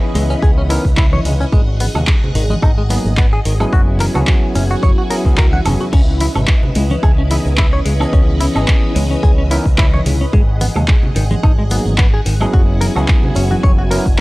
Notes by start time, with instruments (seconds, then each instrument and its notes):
Already playing: tine electric piano E3 B3 C#4 G#4 D#5, string machine C#4 E4 B4 D#5
0.15 picked electric bass C#2, clean electric guitar G#3, open hi-hat, shaker
0.30 clean electric guitar C#4, shaker
0.42 picked electric bass C#2, clean electric guitar G#4, kick, shaker
0.58 clean electric guitar C#4
0.70 tine electric piano E3 B3 C#4 D#4 A#4, clean electric guitar E4, open hi-hat, shaker
0.85 picked electric bass C#2, kick, shaker
0.97 clean electric guitar E4, kick, clap, shaker
1.13 clean electric guitar C#5, high conga
1.25 picked electric bass C#2, clean electric guitar G#3, open hi-hat, low conga, shaker
1.41 clean electric guitar C#4, shaker
1.52 picked electric bass G#1, clean electric guitar G#3, string machine G#4 F#5, kick, shaker
1.80 clean electric guitar B3, open hi-hat, high conga, shaker
1.95 picked electric bass D#2, clean electric guitar G#3, low conga, high woodblock, shaker
2.07 kick, clap, shaker
2.24 low conga
2.35 picked electric bass G#1, clean electric guitar D#3, open hi-hat, shaker
2.50 clean electric guitar G#3, high conga, shaker
2.62 picked electric bass G#1, clean electric guitar D#4, kick, high woodblock, shaker
2.78 clean electric guitar G#3
2.89 tine electric piano F#3 A#3 B3 D#4 G#4, clean electric guitar B3, open hi-hat, shaker
3.05 picked electric bass G#1, high conga, shaker
3.17 clean electric guitar B3, kick, clap, shaker
3.33 clean electric guitar G#4
3.45 picked electric bass G#1, clean electric guitar D#3, open hi-hat, shaker
3.60 tine electric piano F#3 B3 C#4 E4 G#4, clean electric guitar G#3, high woodblock, shaker
3.73 picked electric bass F#1, string machine E4 F#4 G#5, clean electric guitar F#4, kick, shaker
4.00 clean electric guitar A#4, clap, open hi-hat, high conga, shaker
4.14 picked electric bass C#2, tine electric piano F#3 B3 C#4 E4 G#4, clean electric guitar F#4, low conga, high woodblock, shaker
4.27 kick, clap, shaker
4.55 picked electric bass F#1, clean electric guitar C#4, open hi-hat, shaker
4.70 clean electric guitar F#4, shaker
4.83 picked electric bass F#1, clean electric guitar C#5, kick, shaker
4.98 clean electric guitar F#4
5.10 tine electric piano F#3 B3 C#4 E4 G#4, clean electric guitar A#4, open hi-hat, shaker
5.25 picked electric bass C#2, tine electric piano F#3 B3 C#4 E4 G#4, kick, shaker
5.37 clean electric guitar A#4, kick, clap, shaker
5.53 clean electric guitar F#5, high conga
5.65 picked electric bass F#1, tine electric piano F#3 B3 C#4 E4 G#4, clean electric guitar C#4, open hi-hat, low conga, high woodblock, shaker
5.80 clean electric guitar F#4, shaker
5.93 picked electric bass C#2, clean electric guitar C#4, string machine C#4 B4 D#5, kick, crash, shaker
6.20 clean electric guitar E4, open hi-hat, high conga, shaker
6.36 picked electric bass G#1, clean electric guitar C#4, low conga, high woodblock, shaker
6.47 kick, clap, shaker
6.63 low conga
6.75 picked electric bass C#2, clean electric guitar G#3, open hi-hat, shaker
6.90 clean electric guitar C#4, high conga, shaker
7.03 picked electric bass C#2, clean electric guitar G#4, kick, high woodblock, shaker
7.18 clean electric guitar C#4
7.30 tine electric piano E3 B3 C#4 D#4 G#4, clean electric guitar E4, open hi-hat, shaker
7.46 picked electric bass C#2, high conga, shaker
7.58 clean electric guitar E4, kick, clap, shaker
7.73 clean electric guitar C#5
7.85 picked electric bass C#2, clean electric guitar G#3, open hi-hat, shaker
8.00 tine electric piano E3 B3 C#4 G#4 D#5, clean electric guitar C#4, high woodblock, shaker
8.13 picked electric bass C#2, clean electric guitar C#4, kick, shaker
8.41 clean electric guitar E4, open hi-hat, high conga, shaker
8.55 picked electric bass G#1, tine electric piano E3 B3 C#4 G#4 D#5, clean electric guitar C#4, high woodblock, shaker
8.68 kick, clap, shaker
8.96 picked electric bass C#2, clean electric guitar G#3, open hi-hat, shaker
9.11 clean electric guitar C#4, shaker
9.23 picked electric bass C#2, clean electric guitar G#4, kick, shaker
9.38 clean electric guitar C#4
9.51 tine electric piano E3 B3 C#4 D#4 A#4, clean electric guitar E4, open hi-hat, shaker
9.66 picked electric bass C#2, kick, shaker
9.78 clean electric guitar E4, kick, clap, shaker
9.94 clean electric guitar C#5, high conga
10.06 picked electric bass C#2, clean electric guitar G#3, open hi-hat, low conga, shaker
10.21 clean electric guitar C#4, shaker
10.33 picked electric bass G#1, clean electric guitar G#3, string machine G#4 F#5, kick, shaker
10.61 clean electric guitar B3, open hi-hat, high conga, shaker
10.76 picked electric bass D#2, clean electric guitar G#3, low conga, high woodblock, shaker
10.88 kick, clap, shaker
11.03 low conga
11.16 picked electric bass G#1, clean electric guitar D#3, open hi-hat, shaker
11.30 clean electric guitar G#3, high conga, shaker
11.43 picked electric bass G#1, clean electric guitar D#4, kick, high woodblock, shaker
11.59 clean electric guitar G#3
11.70 tine electric piano F#3 A#3 B3 D#4 G#4, clean electric guitar B3, open hi-hat, shaker
11.85 picked electric bass G#1, high conga, shaker
11.98 clean electric guitar B3, kick, clap, shaker
12.14 clean electric guitar G#4
12.26 picked electric bass G#1, clean electric guitar D#3, open hi-hat, shaker
12.40 tine electric piano F#3 B3 C#4 E4 G#4, clean electric guitar G#3, high woodblock, shaker
12.53 picked electric bass F#1, string machine E4 F#4 G#5, clean electric guitar F#4, kick, shaker
12.81 clean electric guitar A#4, open hi-hat, high conga, shaker
12.95 picked electric bass C#2, tine electric piano F#3 B3 C#4 E4 G#4, clean electric guitar F#4, high woodblock, shaker
13.08 kick, clap, shaker
13.23 low conga
13.35 picked electric bass F#1, clean electric guitar C#4, open hi-hat, shaker
13.51 clean electric guitar F#4, high conga, shaker
13.63 picked electric bass F#1, clean electric guitar C#5, kick, shaker
13.79 clean electric guitar F#4
13.91 tine electric piano F#3 B3 C#4 E4 A#4, clean electric guitar A#4, open hi-hat, shaker
14.06 picked electric bass F#1, kick, shaker